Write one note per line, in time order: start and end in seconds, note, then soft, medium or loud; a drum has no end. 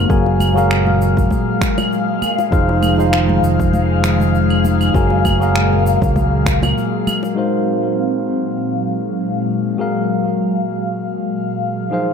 0.00 0.11 G#3 medium
0.00 0.12 D#4 medium
0.00 0.10 F#4 medium
0.00 0.10 A#4 medium
0.00 0.12 C5 medium
0.00 0.11 F5 medium
0.09 1.26 F#1 loud
0.09 2.20 A#2 medium
0.09 0.52 F#3 medium
0.09 7.33 G#3 medium
0.09 0.52 F#4 medium
0.09 0.53 G#4 medium
0.09 0.53 A#4 medium
0.09 7.33 F5 medium
0.09 0.53 G#5 medium
0.09 kick loud
0.09 shaker soft
0.26 high bongo soft
0.40 high conga medium
0.40 claves medium
0.40 shaker medium
0.55 2.19 F#3 medium
0.55 2.20 F#4 medium
0.55 2.20 G#4 medium
0.55 2.21 A#4 medium
0.55 2.21 F5 medium
0.55 shaker soft
0.71 finger snap medium
0.71 shaker soft
0.87 high conga medium
1.02 shaker medium
1.17 kick medium
1.17 low conga medium
1.17 shaker soft
1.30 kick medium
1.30 high conga medium
1.30 shaker soft
1.61 finger snap medium
1.61 kick loud
1.61 shaker medium
1.78 high bongo medium
1.78 high conga medium
1.78 claves medium
1.78 shaker soft
1.93 shaker soft
2.22 4.92 D#3 medium
2.22 high conga medium
2.22 claves medium
2.22 shaker medium
2.38 high bongo medium
2.38 shaker soft
2.51 3.38 F1 loud
2.51 2.94 F3 medium
2.51 2.95 D#4 medium
2.51 2.95 G#4 medium
2.51 2.95 C5 medium
2.51 2.95 F5 medium
2.51 kick loud
2.51 shaker soft
2.69 high bongo medium
2.82 high conga medium
2.82 claves medium
2.82 shaker medium
2.97 4.90 F3 medium
2.97 4.90 D#4 medium
2.97 4.91 G#4 medium
2.97 4.91 C5 medium
2.97 4.92 F5 medium
2.97 shaker soft
3.13 finger snap medium
3.13 shaker soft
3.29 high conga medium
3.43 4.90 F1 medium
3.43 shaker medium
3.60 kick medium
3.60 low conga medium
3.60 shaker soft
3.73 high conga medium
3.73 shaker soft
4.03 finger snap medium
4.03 high bongo soft
4.03 shaker medium
4.20 high conga medium
4.20 shaker soft
4.35 shaker soft
4.50 claves medium
4.65 high bongo soft
4.65 high conga medium
4.65 shaker medium
4.81 claves medium
4.81 shaker soft
4.94 5.96 F#1 loud
4.94 7.34 A#2 medium
4.94 5.37 F#3 medium
4.94 5.37 F#4 medium
4.94 5.37 G#4 medium
4.94 5.38 A#4 medium
4.94 5.38 G#5 medium
4.94 kick loud
4.94 shaker soft
5.10 high bongo medium
5.25 kick medium
5.25 high conga medium
5.25 claves medium
5.25 shaker medium
5.39 7.33 F#3 medium
5.39 7.33 F#4 medium
5.39 7.34 G#4 medium
5.39 7.34 A#4 medium
5.39 7.35 F5 medium
5.39 shaker soft
5.56 finger snap medium
5.56 shaker soft
5.73 high conga medium
5.87 shaker medium
6.02 6.72 C#2 medium
6.02 kick loud
6.02 low conga medium
6.02 shaker soft
6.16 kick medium
6.16 high conga medium
6.16 shaker soft
6.46 finger snap medium
6.46 kick loud
6.46 shaker medium
6.63 high bongo medium
6.63 high conga medium
6.63 claves medium
6.63 shaker soft
6.78 shaker soft
7.07 high conga medium
7.07 claves medium
7.07 shaker medium
7.23 high bongo medium
7.23 shaker soft
7.35 11.88 A#2 medium
7.35 11.88 F#3 medium
7.35 9.75 G#3 medium
7.35 11.88 G#3 medium
7.35 9.77 C4 medium
7.35 9.75 D#4 medium
7.35 9.76 F#4 medium
7.35 9.76 A#4 medium
7.35 9.77 C5 medium
7.35 12.13 F5 medium
7.35 9.77 F5 medium
9.77 11.87 F#3 medium
9.77 11.88 F#4 medium
9.77 11.88 G#4 medium
9.77 11.89 A#4 medium
9.77 11.89 F5 medium
11.90 12.13 D#3 medium
11.90 12.13 F3 medium
11.90 12.13 G#3 medium
11.90 12.13 D#4 medium
11.90 12.13 G#4 medium
11.90 12.13 C5 medium
11.94 12.13 F5 medium